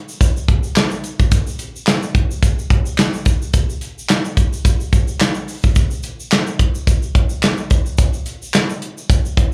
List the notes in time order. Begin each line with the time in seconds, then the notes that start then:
0.09 shaker
0.21 kick, closed hi-hat, shaker
0.37 shaker
0.48 kick, closed hi-hat
0.63 shaker
0.76 snare, clap, closed hi-hat, shaker
0.91 shaker
1.04 closed hi-hat, shaker
1.20 kick, shaker
1.31 kick, closed hi-hat, shaker
1.47 shaker
1.59 closed hi-hat, shaker
1.76 shaker
1.87 snare, clap, closed hi-hat, shaker
2.03 shaker
2.15 kick, closed hi-hat
2.31 shaker
2.43 kick, closed hi-hat, shaker
2.59 shaker
2.70 kick, closed hi-hat
2.86 shaker
2.98 snare, clap, closed hi-hat, shaker
3.13 shaker
3.25 kick, closed hi-hat, shaker
3.42 shaker
3.54 kick, closed hi-hat, shaker
3.70 shaker
3.81 closed hi-hat, shaker
3.98 shaker
4.09 snare, clap, closed hi-hat, shaker
4.25 shaker
4.37 kick, closed hi-hat, shaker
4.53 shaker
4.65 kick, closed hi-hat, shaker
4.80 shaker
4.93 kick, closed hi-hat, shaker
5.08 shaker
5.20 snare, clap, closed hi-hat, shaker
5.35 shaker
5.48 open hi-hat, shaker
5.63 kick, shaker
5.75 kick, closed hi-hat, shaker
5.91 shaker
6.03 closed hi-hat, shaker
6.20 shaker
6.31 snare, clap, closed hi-hat, shaker
6.47 shaker
6.59 kick, closed hi-hat
6.75 shaker
6.87 kick, closed hi-hat, shaker
7.02 shaker
7.15 kick, closed hi-hat
7.29 shaker
7.43 snare, clap, closed hi-hat, shaker
7.58 shaker
7.70 kick, closed hi-hat, shaker
7.86 shaker
7.98 kick, closed hi-hat, shaker
8.13 shaker
8.26 closed hi-hat, shaker
8.42 shaker
8.54 snare, clap, closed hi-hat, shaker
8.70 shaker
8.82 closed hi-hat
8.98 shaker
9.10 kick, closed hi-hat, shaker
9.25 shaker
9.37 kick, closed hi-hat